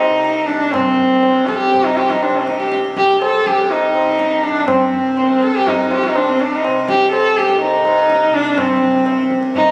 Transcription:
Already playing: C2 G2 C3 D#4
0.00 tabla na
0.10 C3
0.24 tabla te
0.47 D4, tabla te
0.64 C2
0.72 C4, tabla na, tabla ge
0.99 tabla ge
1.19 G2, tabla na
1.47 A4, tabla ke
1.58 G4, tabla te
1.73 C3, tabla tin, tabla ge
1.84 D#4
1.97 G4, tabla na
2.10 D#4, tabla ke
2.22 D4, tabla na
2.30 C3
2.35 C4
2.46 D#4, tabla ke
2.59 G4, tabla te
2.72 tabla te
2.84 C2, tabla te
2.97 G4, tabla ke
3.09 tabla te
3.22 A4, tabla na
3.40 G2
3.46 G4, tabla ke
3.59 tabla te
3.70 D#4, tabla tin
3.94 C3, tabla na
4.19 tabla te
4.43 D4, tabla te
4.49 C3
4.68 C4, tabla na, tabla ge
4.93 tabla ge
5.04 C2
5.17 tabla na
5.42 A4, tabla te
5.55 G2 G4
5.67 D#4, tabla tin, tabla ge
5.91 G4, tabla na
6.03 D#4, tabla ke
6.14 C3 D4, tabla na
6.29 C4
6.40 D4, tabla te
6.52 D#4
6.64 C3, tabla na
6.88 G4, tabla ke
7.12 A4, tabla na
7.22 C2
7.37 G4, tabla ke
7.49 tabla te
7.61 D#4, tabla tin
7.78 G2
7.85 tabla na
8.10 tabla te
8.30 C3 D4, tabla te
8.58 C4, tabla na, tabla ge
8.82 C3, tabla ge
9.06 tabla na
9.30 tabla ke
9.39 C2
9.43 tabla te
9.55 D#4, tabla tin, tabla ge

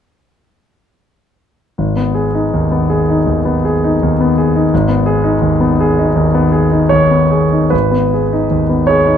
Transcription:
1.78 G#1
1.97 B3
2.15 G#4
2.35 D#4
2.53 D#2
2.71 B3
2.90 G#4
3.10 D#4
3.27 D#2
3.45 B3
3.65 G#4
3.84 D#4
4.03 D#2
4.21 B3
4.38 G#4
4.56 D#4
4.74 G#1
4.89 B3
5.06 G#4
5.24 D#4
5.42 D#2
5.60 B3
5.81 G#4
5.99 D#4
6.16 D#2
6.35 B3
6.52 G#4
6.71 D#4
6.89 D#2 C#5
7.11 B3
7.31 G#4
7.53 D#4
7.70 G#1 B4
7.91 B3
8.14 G#4
8.33 D#4
8.50 D#2
8.69 B3
8.87 G#4 C#5
9.06 D#4

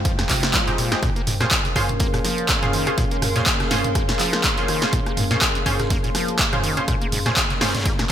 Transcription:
Already playing: G#3 F4 C5 F5 G5
0.05 F3, kick, closed hi-hat
0.19 F2, cross-stick, snare, closed hi-hat
0.29 C3, kick, clap, closed hi-hat, open hi-hat
0.43 snare, closed hi-hat
0.53 F3, kick, cross-stick, snare, clap, closed hi-hat
0.67 G#2 G#3 C4 D#4 G4, closed hi-hat
0.78 A#2, closed hi-hat, open hi-hat
0.92 F2 G#3 C4 D#4 G4, cross-stick, snare, closed hi-hat
1.02 A#2 A#3 C#4 G#4 A#4, kick, cross-stick, closed hi-hat
1.14 A#3 F5, closed hi-hat
1.27 G#2, closed hi-hat, mid tom, open hi-hat
1.40 A#2 C#4 F4 G#4 C5 C6, cross-stick, snare, closed hi-hat
1.51 kick, snare, clap, closed hi-hat
1.65 C#3, closed hi-hat
1.76 C#4 F4 G#4 C5, kick, cross-stick, closed hi-hat, mid tom, open hi-hat
1.89 closed hi-hat, mid tom
1.99 A#3, kick, closed hi-hat
2.14 A#2, cross-stick, closed hi-hat
2.24 F3, snare, closed hi-hat, open hi-hat
2.38 closed hi-hat
2.49 A#3, kick, cross-stick, snare, clap, closed hi-hat
2.62 C#3 C#4 F4 G#4 C5, closed hi-hat, mid tom
2.73 D#3, closed hi-hat, open hi-hat
2.87 A#2 C#4 F4 G#4 C5, cross-stick, closed hi-hat
2.98 A#2, kick, closed hi-hat
3.11 A#3, closed hi-hat
3.22 G#2, cross-stick, closed hi-hat, mid tom, open hi-hat
3.36 A#2 C#4 F4 G#4 C5, snare, closed hi-hat
3.46 kick, snare, clap, closed hi-hat
3.60 C#3, cross-stick, snare, closed hi-hat
3.71 C#4 F4 G#4 C5, snare, closed hi-hat, mid tom, open hi-hat
3.84 closed hi-hat, mid tom
3.95 A#3, kick, cross-stick, closed hi-hat
4.09 A#2, snare, closed hi-hat
4.19 F3, clap, closed hi-hat, open hi-hat
4.33 cross-stick, snare, closed hi-hat
4.44 A#3, kick, snare, clap, closed hi-hat
4.58 C#3 C#4 F4 G#4 C5, closed hi-hat
4.68 D#3, cross-stick, closed hi-hat, open hi-hat
4.82 A#2 C#4 F4 G#4 C5, snare, closed hi-hat
4.93 A#2, kick, closed hi-hat
5.06 A#3, cross-stick, closed hi-hat
5.17 G#2, closed hi-hat, mid tom, open hi-hat
5.31 A#2 C#4 F4 G#4 C5, snare, closed hi-hat
5.42 kick, cross-stick, snare, clap, closed hi-hat
5.55 C#3, closed hi-hat
5.66 C#4 F4 G#4 C5, kick, closed hi-hat, mid tom, open hi-hat
5.79 cross-stick, snare, closed hi-hat, mid tom
5.90 A#3, kick, closed hi-hat
6.04 A#2, closed hi-hat
6.15 F3, cross-stick, snare, closed hi-hat, open hi-hat
6.28 closed hi-hat
6.38 A#3, kick, snare, clap, closed hi-hat
6.53 C#3 C#4 F4 G#4 C5, cross-stick, closed hi-hat, mid tom
6.64 D#3, closed hi-hat, open hi-hat
6.77 A#2 C#4 F4 G#4 C5, closed hi-hat
6.88 A#2, kick, cross-stick, closed hi-hat
7.01 A#3, closed hi-hat
7.12 G#2, closed hi-hat, mid tom, open hi-hat
7.26 A#2 C#4 F4 G#4 C5, cross-stick, snare, closed hi-hat
7.37 kick, snare, clap, closed hi-hat
7.50 C#3, snare, closed hi-hat
7.60 C#4 F4 G#4 C5, cross-stick, snare, closed hi-hat, mid tom, open hi-hat
7.68 snare, closed hi-hat
7.74 snare, closed hi-hat, mid tom
7.79 snare, closed hi-hat
7.85 A#3, kick, closed hi-hat
7.98 A#2, cross-stick, snare, closed hi-hat

